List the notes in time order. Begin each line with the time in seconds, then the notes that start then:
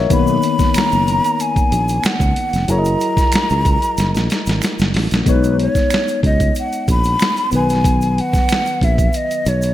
Already playing: A#4 C#5 D#5 E5 F#5 A#5
0.09 B1 D#3 B3 D#4 B5, kick, closed hi-hat, shaker
0.13 A#3
0.27 shaker
0.42 closed hi-hat, shaker
0.59 kick, snare, closed hi-hat, shaker
0.74 A#5, finger snap, muted fretless electric bass stroke, snare, closed hi-hat, shaker
0.92 F#1, shaker
1.07 closed hi-hat, shaker
1.24 closed hi-hat, shaker
1.40 G#5, closed hi-hat, shaker
1.56 kick, closed hi-hat, shaker
1.72 A#1, closed hi-hat, shaker
1.88 closed hi-hat, shaker
2.04 F#5, finger snap, muted fretless electric bass stroke, snare, closed hi-hat, shaker
2.20 C#2, kick, closed hi-hat, shaker
2.36 closed hi-hat
2.53 F1, snare, closed hi-hat, shaker
2.68 F#1 F#3 E4 G#4 A#4 C#5 A#5, closed hi-hat, shaker
2.78 D#5
2.85 closed hi-hat, shaker
3.00 closed hi-hat, shaker
3.17 kick, snare, closed hi-hat, shaker
3.32 finger snap, muted fretless electric bass stroke, snare, closed hi-hat, shaker
3.50 C#2, closed hi-hat, shaker
3.65 kick, closed hi-hat, shaker
3.82 closed hi-hat, shaker
3.97 F#1, snare, closed hi-hat, shaker
4.15 A#1, snare, closed hi-hat, shaker
4.30 snare, closed hi-hat, shaker
4.46 G#1, snare, closed hi-hat, shaker
4.62 finger snap, snare, closed hi-hat, shaker
4.79 F#1, snare, closed hi-hat, shaker
4.94 A1, snare, open hi-hat
5.11 A#1, snare, closed hi-hat, shaker
5.25 B1 G#3 B3 D#4 B4, kick, closed hi-hat, shaker
5.29 C#5
5.44 closed hi-hat, shaker
5.59 C#5, closed hi-hat
5.75 muted fretless electric bass stroke, kick, snare, closed hi-hat, shaker
5.90 finger snap, snare, closed hi-hat, shaker
6.08 closed hi-hat, shaker
6.23 C#2 D#5, kick, closed hi-hat
6.40 kick, closed hi-hat, shaker
6.55 closed hi-hat, shaker
6.59 F#5
6.73 closed hi-hat, shaker
6.88 A#1 B5, kick, closed hi-hat, shaker
7.04 closed hi-hat, shaker
7.20 finger snap, snare, closed hi-hat, shaker
7.36 closed hi-hat, shaker
7.51 B1 D#3 F#3 B3, closed hi-hat, shaker
7.55 B4 G#5
7.69 snare, closed hi-hat, shaker
7.84 kick, closed hi-hat, shaker
8.01 closed hi-hat, shaker
8.18 F#5, closed hi-hat
8.33 muted fretless electric bass stroke, kick, snare, closed hi-hat, shaker
8.49 finger snap, snare, closed hi-hat, shaker
8.66 closed hi-hat, shaker
8.81 A#1 E5, kick, closed hi-hat
8.98 kick, closed hi-hat, shaker
9.13 D#5, closed hi-hat, shaker
9.31 closed hi-hat, shaker
9.46 B1 C#5, closed hi-hat, shaker
9.62 closed hi-hat, shaker